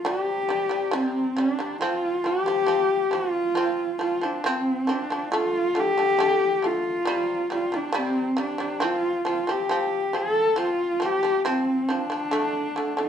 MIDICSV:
0, 0, Header, 1, 3, 480
1, 0, Start_track
1, 0, Tempo, 877193
1, 988, Time_signature, 4, 2, 24, 8
1, 7162, End_track
2, 0, Start_track
2, 0, Title_t, "Horsehead fiddle"
2, 0, Program_c, 0, 110
2, 29, Note_on_c, 0, 67, 89
2, 512, Note_on_c, 0, 60, 82
2, 520, Note_off_c, 0, 67, 0
2, 751, Note_on_c, 0, 62, 79
2, 759, Note_off_c, 0, 60, 0
2, 990, Note_off_c, 0, 62, 0
2, 996, Note_on_c, 0, 65, 93
2, 1236, Note_on_c, 0, 67, 100
2, 1244, Note_off_c, 0, 65, 0
2, 1720, Note_on_c, 0, 65, 94
2, 1728, Note_off_c, 0, 67, 0
2, 2196, Note_off_c, 0, 65, 0
2, 2200, Note_on_c, 0, 65, 83
2, 2326, Note_on_c, 0, 62, 72
2, 2334, Note_off_c, 0, 65, 0
2, 2448, Note_on_c, 0, 60, 83
2, 2457, Note_off_c, 0, 62, 0
2, 2684, Note_on_c, 0, 62, 83
2, 2692, Note_off_c, 0, 60, 0
2, 2918, Note_off_c, 0, 62, 0
2, 2921, Note_on_c, 0, 65, 97
2, 3174, Note_on_c, 0, 67, 112
2, 3182, Note_off_c, 0, 65, 0
2, 3645, Note_on_c, 0, 65, 99
2, 3653, Note_off_c, 0, 67, 0
2, 4118, Note_off_c, 0, 65, 0
2, 4128, Note_on_c, 0, 65, 89
2, 4249, Note_on_c, 0, 62, 79
2, 4257, Note_off_c, 0, 65, 0
2, 4365, Note_on_c, 0, 60, 90
2, 4373, Note_off_c, 0, 62, 0
2, 4597, Note_off_c, 0, 60, 0
2, 4606, Note_on_c, 0, 62, 82
2, 4840, Note_on_c, 0, 65, 98
2, 4849, Note_off_c, 0, 62, 0
2, 5074, Note_off_c, 0, 65, 0
2, 5083, Note_on_c, 0, 65, 86
2, 5201, Note_on_c, 0, 67, 83
2, 5209, Note_off_c, 0, 65, 0
2, 5565, Note_on_c, 0, 69, 100
2, 5573, Note_off_c, 0, 67, 0
2, 5796, Note_off_c, 0, 69, 0
2, 5802, Note_on_c, 0, 65, 90
2, 6049, Note_on_c, 0, 67, 100
2, 6057, Note_off_c, 0, 65, 0
2, 6276, Note_off_c, 0, 67, 0
2, 6287, Note_on_c, 0, 60, 88
2, 6518, Note_on_c, 0, 62, 95
2, 6526, Note_off_c, 0, 60, 0
2, 7113, Note_on_c, 0, 65, 82
2, 7122, Note_off_c, 0, 62, 0
2, 7162, Note_off_c, 0, 65, 0
2, 7162, End_track
3, 0, Start_track
3, 0, Title_t, "Shamisen"
3, 0, Program_c, 1, 106
3, 26, Note_on_c, 1, 48, 93
3, 34, Note_on_c, 1, 55, 94
3, 218, Note_off_c, 1, 48, 0
3, 222, Note_off_c, 1, 55, 0
3, 266, Note_on_c, 1, 48, 66
3, 275, Note_on_c, 1, 55, 75
3, 363, Note_off_c, 1, 48, 0
3, 367, Note_off_c, 1, 55, 0
3, 380, Note_on_c, 1, 48, 60
3, 388, Note_on_c, 1, 55, 70
3, 479, Note_off_c, 1, 48, 0
3, 484, Note_off_c, 1, 55, 0
3, 500, Note_on_c, 1, 48, 82
3, 511, Note_on_c, 1, 55, 92
3, 696, Note_off_c, 1, 48, 0
3, 701, Note_off_c, 1, 55, 0
3, 747, Note_on_c, 1, 48, 65
3, 757, Note_on_c, 1, 55, 74
3, 844, Note_off_c, 1, 48, 0
3, 849, Note_off_c, 1, 55, 0
3, 868, Note_on_c, 1, 48, 64
3, 877, Note_on_c, 1, 55, 67
3, 964, Note_off_c, 1, 48, 0
3, 968, Note_off_c, 1, 55, 0
3, 989, Note_on_c, 1, 53, 82
3, 996, Note_on_c, 1, 60, 93
3, 1181, Note_off_c, 1, 53, 0
3, 1185, Note_off_c, 1, 60, 0
3, 1226, Note_on_c, 1, 53, 58
3, 1236, Note_on_c, 1, 60, 74
3, 1324, Note_off_c, 1, 53, 0
3, 1328, Note_off_c, 1, 60, 0
3, 1347, Note_on_c, 1, 53, 62
3, 1356, Note_on_c, 1, 60, 74
3, 1444, Note_off_c, 1, 53, 0
3, 1449, Note_off_c, 1, 60, 0
3, 1458, Note_on_c, 1, 53, 81
3, 1467, Note_on_c, 1, 60, 83
3, 1656, Note_off_c, 1, 53, 0
3, 1661, Note_off_c, 1, 60, 0
3, 1702, Note_on_c, 1, 53, 59
3, 1712, Note_on_c, 1, 60, 68
3, 1898, Note_off_c, 1, 53, 0
3, 1903, Note_off_c, 1, 60, 0
3, 1943, Note_on_c, 1, 53, 83
3, 1954, Note_on_c, 1, 60, 95
3, 2139, Note_off_c, 1, 53, 0
3, 2144, Note_off_c, 1, 60, 0
3, 2183, Note_on_c, 1, 53, 69
3, 2194, Note_on_c, 1, 60, 70
3, 2283, Note_off_c, 1, 53, 0
3, 2289, Note_off_c, 1, 60, 0
3, 2306, Note_on_c, 1, 53, 58
3, 2316, Note_on_c, 1, 60, 65
3, 2404, Note_off_c, 1, 53, 0
3, 2410, Note_off_c, 1, 60, 0
3, 2430, Note_on_c, 1, 53, 82
3, 2441, Note_on_c, 1, 60, 99
3, 2622, Note_off_c, 1, 53, 0
3, 2628, Note_off_c, 1, 60, 0
3, 2666, Note_on_c, 1, 53, 71
3, 2675, Note_on_c, 1, 60, 75
3, 2765, Note_off_c, 1, 53, 0
3, 2769, Note_off_c, 1, 60, 0
3, 2793, Note_on_c, 1, 53, 66
3, 2802, Note_on_c, 1, 60, 72
3, 2888, Note_off_c, 1, 53, 0
3, 2892, Note_off_c, 1, 60, 0
3, 2910, Note_on_c, 1, 50, 88
3, 2919, Note_on_c, 1, 57, 96
3, 3103, Note_off_c, 1, 50, 0
3, 3107, Note_off_c, 1, 57, 0
3, 3146, Note_on_c, 1, 50, 67
3, 3154, Note_on_c, 1, 57, 68
3, 3245, Note_off_c, 1, 50, 0
3, 3248, Note_off_c, 1, 57, 0
3, 3270, Note_on_c, 1, 50, 64
3, 3277, Note_on_c, 1, 57, 70
3, 3366, Note_off_c, 1, 50, 0
3, 3370, Note_off_c, 1, 57, 0
3, 3385, Note_on_c, 1, 50, 84
3, 3394, Note_on_c, 1, 57, 95
3, 3580, Note_off_c, 1, 50, 0
3, 3585, Note_off_c, 1, 57, 0
3, 3625, Note_on_c, 1, 50, 59
3, 3634, Note_on_c, 1, 57, 70
3, 3820, Note_off_c, 1, 50, 0
3, 3824, Note_off_c, 1, 57, 0
3, 3860, Note_on_c, 1, 48, 91
3, 3870, Note_on_c, 1, 55, 101
3, 4057, Note_off_c, 1, 48, 0
3, 4063, Note_off_c, 1, 55, 0
3, 4105, Note_on_c, 1, 48, 68
3, 4114, Note_on_c, 1, 55, 76
3, 4204, Note_off_c, 1, 48, 0
3, 4208, Note_off_c, 1, 55, 0
3, 4224, Note_on_c, 1, 48, 58
3, 4234, Note_on_c, 1, 55, 61
3, 4323, Note_off_c, 1, 48, 0
3, 4328, Note_off_c, 1, 55, 0
3, 4337, Note_on_c, 1, 48, 89
3, 4348, Note_on_c, 1, 55, 103
3, 4535, Note_off_c, 1, 48, 0
3, 4541, Note_off_c, 1, 55, 0
3, 4578, Note_on_c, 1, 48, 73
3, 4586, Note_on_c, 1, 55, 81
3, 4680, Note_off_c, 1, 48, 0
3, 4684, Note_off_c, 1, 55, 0
3, 4696, Note_on_c, 1, 48, 65
3, 4707, Note_on_c, 1, 55, 67
3, 4799, Note_off_c, 1, 48, 0
3, 4804, Note_off_c, 1, 55, 0
3, 4816, Note_on_c, 1, 53, 92
3, 4825, Note_on_c, 1, 60, 97
3, 5014, Note_off_c, 1, 53, 0
3, 5019, Note_off_c, 1, 60, 0
3, 5061, Note_on_c, 1, 53, 69
3, 5070, Note_on_c, 1, 60, 80
3, 5161, Note_off_c, 1, 53, 0
3, 5165, Note_off_c, 1, 60, 0
3, 5183, Note_on_c, 1, 53, 64
3, 5192, Note_on_c, 1, 60, 76
3, 5282, Note_off_c, 1, 53, 0
3, 5286, Note_off_c, 1, 60, 0
3, 5305, Note_on_c, 1, 53, 75
3, 5314, Note_on_c, 1, 60, 85
3, 5498, Note_off_c, 1, 53, 0
3, 5503, Note_off_c, 1, 60, 0
3, 5545, Note_on_c, 1, 53, 63
3, 5551, Note_on_c, 1, 60, 65
3, 5737, Note_off_c, 1, 53, 0
3, 5741, Note_off_c, 1, 60, 0
3, 5779, Note_on_c, 1, 53, 87
3, 5787, Note_on_c, 1, 60, 88
3, 5974, Note_off_c, 1, 53, 0
3, 5978, Note_off_c, 1, 60, 0
3, 6018, Note_on_c, 1, 53, 74
3, 6029, Note_on_c, 1, 60, 77
3, 6118, Note_off_c, 1, 53, 0
3, 6123, Note_off_c, 1, 60, 0
3, 6144, Note_on_c, 1, 53, 65
3, 6153, Note_on_c, 1, 60, 67
3, 6240, Note_off_c, 1, 53, 0
3, 6245, Note_off_c, 1, 60, 0
3, 6265, Note_on_c, 1, 53, 79
3, 6269, Note_on_c, 1, 60, 93
3, 6456, Note_off_c, 1, 53, 0
3, 6458, Note_off_c, 1, 60, 0
3, 6504, Note_on_c, 1, 53, 66
3, 6513, Note_on_c, 1, 60, 75
3, 6599, Note_off_c, 1, 53, 0
3, 6604, Note_off_c, 1, 60, 0
3, 6620, Note_on_c, 1, 53, 63
3, 6631, Note_on_c, 1, 60, 69
3, 6717, Note_off_c, 1, 53, 0
3, 6723, Note_off_c, 1, 60, 0
3, 6738, Note_on_c, 1, 50, 88
3, 6746, Note_on_c, 1, 57, 98
3, 6931, Note_off_c, 1, 50, 0
3, 6935, Note_off_c, 1, 57, 0
3, 6982, Note_on_c, 1, 50, 64
3, 6991, Note_on_c, 1, 57, 69
3, 7077, Note_off_c, 1, 50, 0
3, 7081, Note_off_c, 1, 57, 0
3, 7097, Note_on_c, 1, 50, 63
3, 7105, Note_on_c, 1, 57, 66
3, 7162, Note_off_c, 1, 50, 0
3, 7162, Note_off_c, 1, 57, 0
3, 7162, End_track
0, 0, End_of_file